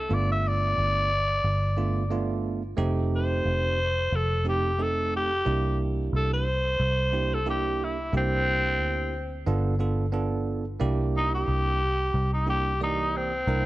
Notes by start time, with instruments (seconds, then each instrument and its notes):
0.00 tenor saxophone A4
0.09 fingered electric bass G1, tine electric piano A3 B3 D4 F4
0.14 tenor saxophone D5
0.32 tenor saxophone E5
0.48 tenor saxophone D5
0.78 fingered electric bass G1
1.44 fingered electric bass G1
1.77 tine electric piano A3 B3 D4 F4
2.10 tine electric piano A3 B3 D4 F4
2.77 fingered electric bass F1, tine electric piano A3 C4 D#4 G4
3.16 tenor saxophone C5
3.45 fingered electric bass F1
4.12 fingered electric bass F1, tenor saxophone A4
4.45 tine electric piano A3 C4 D#4 G4
4.49 tenor saxophone G4
4.79 tine electric piano A3 C4 D#4 A4
4.83 tenor saxophone A4
5.16 tenor saxophone G4
5.45 fingered electric bass C2, tine electric piano A#3 D4 E4 G4
6.13 fingered electric bass C2, tenor saxophone A4
6.34 tenor saxophone C5
6.80 fingered electric bass C2
7.13 tine electric piano A#3 D4 E4 G4
7.34 tenor saxophone A4
7.46 tine electric piano A#3 D4 E4 G4
7.50 tenor saxophone G4
7.84 tenor saxophone E4
8.13 fingered electric bass C2, tine electric piano A#3 D4 E4 G4
8.17 tenor saxophone C4
8.80 fingered electric bass D2
9.46 fingered electric bass G1, tine electric piano B3 D4 F4 A4
9.79 tine electric piano B3 D4 F4 A4
10.12 tine electric piano B3 D4 F4 A4
10.80 fingered electric bass C2, tine electric piano A#3 D4 E4 G4
11.17 tenor saxophone D#4
11.35 tenor saxophone G4
11.48 fingered electric bass C2
12.14 fingered electric bass C2
12.33 tenor saxophone D#4
12.46 tine electric piano A#3 D4 E4 G4, tenor saxophone G4
12.80 tine electric piano E3 A#3 G4 D5, tenor saxophone D#4
13.17 tenor saxophone C4
13.47 fingered electric bass C2, tine electric piano A#3 D4 E4 A#4